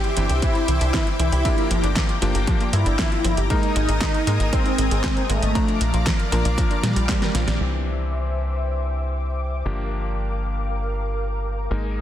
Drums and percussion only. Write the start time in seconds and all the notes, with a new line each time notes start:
0.04 closed hi-hat
0.17 closed hi-hat
0.29 closed hi-hat
0.42 kick, closed hi-hat
0.55 closed hi-hat
0.68 closed hi-hat
0.81 closed hi-hat
0.94 kick, snare, clap, closed hi-hat
1.07 closed hi-hat
1.20 closed hi-hat
1.32 closed hi-hat
1.45 kick, closed hi-hat
1.58 closed hi-hat
1.71 closed hi-hat
1.84 closed hi-hat
1.96 kick, snare, clap, closed hi-hat
2.09 closed hi-hat
2.22 closed hi-hat
2.35 closed hi-hat
2.47 kick, closed hi-hat
2.60 closed hi-hat
2.73 closed hi-hat
2.86 closed hi-hat
2.99 kick, snare, clap, closed hi-hat
3.12 closed hi-hat
3.25 closed hi-hat
3.37 closed hi-hat
3.50 kick, closed hi-hat
3.63 closed hi-hat
3.76 closed hi-hat
3.89 closed hi-hat
4.01 kick, snare, clap, closed hi-hat
4.14 closed hi-hat
4.27 closed hi-hat
4.40 closed hi-hat
4.53 kick, closed hi-hat
4.66 closed hi-hat
4.78 closed hi-hat
4.91 closed hi-hat
5.04 kick, snare, clap, closed hi-hat
5.17 closed hi-hat
5.30 closed hi-hat
5.43 closed hi-hat
5.55 kick, closed hi-hat
5.68 closed hi-hat
5.81 closed hi-hat
5.94 closed hi-hat
6.07 kick, snare, clap, closed hi-hat
6.20 closed hi-hat
6.32 closed hi-hat
6.45 closed hi-hat
6.58 kick, closed hi-hat
6.71 closed hi-hat
6.83 snare, closed hi-hat
6.96 closed hi-hat
7.09 kick, snare, clap, closed hi-hat
7.22 snare, closed hi-hat
7.35 snare, closed hi-hat
7.48 snare, closed hi-hat